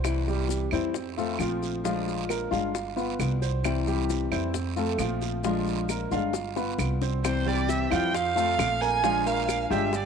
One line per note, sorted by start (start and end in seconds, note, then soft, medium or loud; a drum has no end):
0.00 0.66 C2 medium
0.00 0.19 C5 medium
0.00 claves medium
0.04 0.71 C3 medium
0.04 0.71 E3 medium
0.04 0.71 G3 medium
0.04 0.72 C4 medium
0.04 0.71 E4 medium
0.04 high bongo medium
0.04 long guiro medium
0.04 maracas medium
0.27 0.65 G3 medium
0.27 0.65 G4 medium
0.27 high bongo soft
0.27 maracas soft
0.49 high bongo medium
0.49 short guiro medium
0.49 maracas medium
0.71 1.36 F2 medium
0.71 0.95 E3 medium
0.71 0.95 G3 medium
0.71 1.09 C4 medium
0.71 0.94 C4 medium
0.71 0.94 E4 medium
0.71 1.10 C5 medium
0.71 high bongo soft
0.71 short guiro medium
0.71 claves medium
0.71 maracas soft
0.94 muted nylon-string guitar stroke medium
0.94 high bongo medium
0.94 long guiro medium
0.94 maracas medium
1.17 1.38 F3 soft
1.17 1.36 A3 medium
1.17 1.39 A3 medium
1.17 1.40 C4 medium
1.17 1.39 F4 medium
1.17 1.36 A4 medium
1.17 maracas soft
1.39 2.45 A#1 medium
1.39 1.83 F3 soft
1.39 1.77 F3 medium
1.39 1.84 A3 soft
1.39 1.84 C4 medium
1.39 1.77 F4 medium
1.39 1.85 F4 medium
1.39 high bongo soft
1.39 low bongo medium
1.39 short guiro medium
1.39 claves medium
1.39 maracas medium
1.63 high bongo soft
1.63 short guiro medium
1.63 maracas soft
1.84 2.51 F3 medium
1.84 2.21 F3 medium
1.84 2.51 G#3 medium
1.84 2.51 D4 medium
1.84 2.22 F4 medium
1.84 2.50 F4 medium
1.84 high bongo medium
1.84 long guiro medium
1.84 maracas medium
2.08 high bongo soft
2.08 maracas soft
2.29 2.48 A#3 medium
2.29 2.48 A#4 medium
2.29 high bongo medium
2.29 short guiro medium
2.29 claves medium
2.29 maracas medium
2.51 3.15 G1 medium
2.51 2.73 G#3 medium
2.51 2.74 D4 medium
2.51 2.73 F4 medium
2.51 2.89 F4 medium
2.51 2.89 F5 medium
2.51 high bongo soft
2.51 short guiro medium
2.51 maracas soft
2.74 muted nylon-string guitar stroke medium
2.74 high bongo medium
2.74 long guiro medium
2.74 maracas medium
2.96 3.33 B3 medium
2.96 3.19 B3 soft
2.96 3.18 F4 medium
2.96 3.34 B4 medium
2.96 maracas soft
3.19 4.26 C2 medium
3.19 3.63 G3 soft
3.19 3.64 B3 soft
3.19 3.64 F4 soft
3.19 high bongo soft
3.19 low bongo medium
3.19 short guiro medium
3.19 claves medium
3.19 maracas medium
3.42 3.79 C5 medium
3.42 high bongo soft
3.42 short guiro medium
3.42 maracas soft
3.64 4.31 C3 medium
3.64 4.31 E3 medium
3.64 4.31 G3 medium
3.64 4.31 C4 medium
3.64 4.30 E4 medium
3.64 high bongo medium
3.64 long guiro medium
3.64 claves medium
3.64 maracas medium
3.87 4.24 G3 medium
3.87 4.24 G4 medium
3.87 high bongo soft
3.87 maracas soft
4.10 high bongo medium
4.10 short guiro medium
4.10 maracas medium
4.31 4.95 F2 medium
4.31 4.53 E3 medium
4.31 4.54 G3 medium
4.31 4.69 C4 medium
4.31 4.53 C4 medium
4.31 4.53 E4 medium
4.31 4.69 C5 medium
4.31 high bongo soft
4.31 short guiro medium
4.31 claves medium
4.31 maracas soft
4.54 muted nylon-string guitar stroke medium
4.54 high bongo medium
4.54 long guiro medium
4.54 maracas medium
4.76 4.97 F3 medium
4.76 4.96 A3 medium
4.76 4.98 A3 medium
4.76 4.98 C4 medium
4.76 4.98 F4 medium
4.76 4.96 A4 medium
4.76 maracas soft
4.98 6.05 A#1 medium
4.98 5.42 F3 soft
4.98 5.36 F3 medium
4.98 5.44 A3 soft
4.98 5.44 C4 soft
4.98 5.36 F4 medium
4.98 5.44 F4 medium
4.98 high bongo soft
4.98 low bongo medium
4.98 short guiro medium
4.98 claves medium
4.98 maracas medium
5.21 high bongo soft
5.21 short guiro medium
5.21 maracas soft
5.43 6.10 F3 medium
5.43 5.82 F3 medium
5.43 6.11 G#3 medium
5.43 6.11 D4 medium
5.43 6.10 F4 medium
5.43 5.82 F4 medium
5.43 high bongo medium
5.43 long guiro medium
5.43 maracas medium
5.67 high bongo soft
5.67 maracas soft
5.89 6.08 A#3 medium
5.89 6.08 A#4 medium
5.89 high bongo medium
5.89 short guiro medium
5.89 claves medium
5.89 maracas medium
6.11 6.75 G1 medium
6.11 6.34 G#3 medium
6.11 6.34 D4 medium
6.11 6.33 F4 medium
6.11 6.49 F4 medium
6.11 6.49 F5 medium
6.11 high bongo soft
6.11 short guiro medium
6.11 maracas soft
6.33 muted nylon-string guitar stroke medium
6.33 high bongo loud
6.33 long guiro medium
6.33 maracas medium
6.56 6.93 B3 medium
6.56 6.78 B3 medium
6.56 6.78 F4 medium
6.56 6.93 B4 medium
6.56 high bongo medium
6.56 maracas soft
6.78 7.85 C2 medium
6.78 7.23 G3 soft
6.78 7.23 B3 medium
6.78 7.24 F4 medium
6.78 low bongo medium
6.78 short guiro medium
6.78 claves medium
6.78 maracas medium
7.02 7.20 C4 medium
7.02 7.20 C5 medium
7.02 low bongo medium
7.02 short guiro medium
7.02 maracas soft
7.24 7.90 C3 medium
7.24 7.91 E3 medium
7.24 7.91 G3 medium
7.24 7.90 C4 medium
7.24 7.89 E4 medium
7.24 7.49 C5 medium
7.24 high bongo medium
7.24 long guiro medium
7.24 claves medium
7.24 maracas medium
7.46 7.83 G3 medium
7.46 7.83 G4 medium
7.46 7.71 D5 medium
7.46 7.83 G5 medium
7.68 7.92 E5 medium
7.68 high bongo medium
7.68 short guiro medium
7.68 maracas medium
7.90 8.55 F2 medium
7.90 8.13 E3 medium
7.90 8.28 F3 medium
7.90 8.13 G3 medium
7.90 8.13 C4 medium
7.90 8.12 E4 medium
7.90 8.28 F4 medium
7.90 8.29 F5 medium
7.90 8.17 G5 medium
7.90 short guiro medium
7.90 claves medium
7.90 maracas soft
8.13 8.83 F5 loud
8.13 muted nylon-string guitar stroke medium
8.13 high bongo medium
8.13 long guiro medium
8.13 maracas medium
8.36 8.57 F3 soft
8.36 8.73 A3 medium
8.36 8.58 A3 medium
8.36 8.58 C4 medium
8.36 8.57 F4 medium
8.36 8.73 A4 medium
8.36 8.73 A5 medium
8.36 maracas medium
8.58 9.64 A#1 loud
8.58 9.02 F3 soft
8.58 9.03 A3 medium
8.58 9.03 C4 medium
8.58 9.03 F4 medium
8.58 high bongo medium
8.58 low bongo medium
8.58 short guiro medium
8.58 claves medium
8.58 maracas medium
8.81 9.00 A#3 medium
8.81 9.00 A#4 medium
8.81 9.28 G#5 loud
8.81 9.00 A#5 medium
8.81 short guiro medium
8.81 maracas soft
9.03 9.69 F3 medium
9.03 9.22 F3 medium
9.03 9.70 G#3 medium
9.03 9.70 D4 medium
9.03 9.22 F4 medium
9.03 9.69 F4 medium
9.03 9.22 F5 medium
9.03 high bongo medium
9.03 long guiro medium
9.03 maracas medium
9.26 9.63 A#3 medium
9.26 9.63 A#4 medium
9.26 9.71 F5 loud
9.26 9.63 A#5 medium
9.26 high bongo soft
9.26 maracas medium
9.48 high bongo medium
9.48 short guiro medium
9.48 claves medium
9.48 maracas medium
9.70 10.05 G1 loud
9.70 9.93 G#3 medium
9.70 9.93 D4 medium
9.70 9.92 F4 medium
9.70 10.05 G4 medium
9.70 9.97 E5 medium
9.70 10.05 G5 medium
9.70 10.05 G6 medium
9.70 short guiro medium
9.70 maracas soft
9.93 10.05 D5 medium
9.93 muted nylon-string guitar stroke medium
9.93 high bongo medium
9.93 long guiro medium
9.93 maracas medium